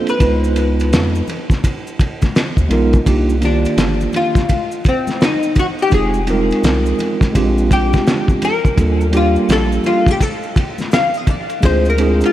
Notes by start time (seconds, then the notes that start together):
Already playing: A#3 C4 D4 F4 A4
0.07 B4, ride, maracas
0.19 C#2 G#3 B3 D#4 F4 B4, kick, ride, maracas
0.44 maracas
0.56 ride, maracas
0.80 ride, maracas
0.92 F2, snare, hi-hat pedal, ride, maracas
1.15 maracas
1.27 ride, low conga, maracas
1.50 kick, snare, maracas
1.64 kick, ride, maracas
1.87 maracas
1.99 kick, ride, maracas
2.22 kick, snare, ride, high conga, maracas
2.35 snare, hi-hat pedal, ride, maracas
2.57 D#2, kick, maracas
2.69 B1 G#3 B3 D#4 F4 A#4, ride, low conga, maracas
2.93 kick, ride, maracas
3.04 C2 A#3 D4 D#4 F4 G4, kick, ride, maracas
3.29 maracas
3.41 D#3 A#3 D4 F4 G4, ride, maracas
3.45 D4
3.65 ride, maracas
3.77 G1, snare, hi-hat pedal, ride, maracas
4.01 maracas
4.13 F4, ride, low conga, maracas
4.35 kick, snare, high conga, maracas
4.49 kick, ride, high conga, maracas
4.71 maracas
4.84 kick, ride, maracas
4.89 C4
5.07 snare, high conga, maracas
5.20 D#4, snare, hi-hat pedal, ride, maracas
5.43 maracas
5.55 F#4, kick, ride, low conga, maracas
5.79 G4, maracas
5.90 F1 G#3 C4 D#4 F4 G4, kick, ride, maracas
5.94 G#4
6.14 maracas
6.27 G3 C4 D#4 F4 A#4, ride, maracas
6.33 G#3
6.50 ride, maracas
6.63 C2, snare, hi-hat pedal, ride, maracas
6.86 maracas
6.99 ride, low conga, maracas
7.21 kick, snare, ride, high conga, maracas
7.33 A#1 G#3 C4 D4 F4, kick, ride, high conga, maracas
7.37 G4
7.58 maracas
7.71 G4, kick, ride, maracas
7.93 kick, snare, ride, high conga, maracas
8.07 snare, hi-hat pedal, ride, maracas
8.28 kick, maracas
8.42 A#4, ride, low conga, maracas
8.65 kick, maracas
8.76 D#2 G3 A#3 D4 F4 A4, kick, ride, maracas
9.01 maracas
9.11 G3 A#3 D4 F4 G4, ride, maracas
9.17 F4
9.36 maracas
9.49 A#1 A4, snare, hi-hat pedal, ride, maracas
9.72 maracas
9.84 F4, ride, low conga, maracas
10.06 kick, ride, high conga, maracas
10.11 G4
10.21 A4, kick, ride, high conga, maracas
10.43 maracas
10.56 kick, ride, maracas
10.78 snare, high conga, maracas
10.92 F5, snare, hi-hat pedal, ride, maracas
11.14 D#5, maracas
11.27 D5, kick, ride, low conga, maracas
11.50 ride, maracas
11.61 D2 G#3 C4 D4 F4 G#4, kick, ride, maracas
11.65 C5
11.85 maracas
11.90 A#4
11.97 G#3 C4 D4 E4 G#4, ride, maracas
12.07 F4
12.21 ride, maracas
12.26 F4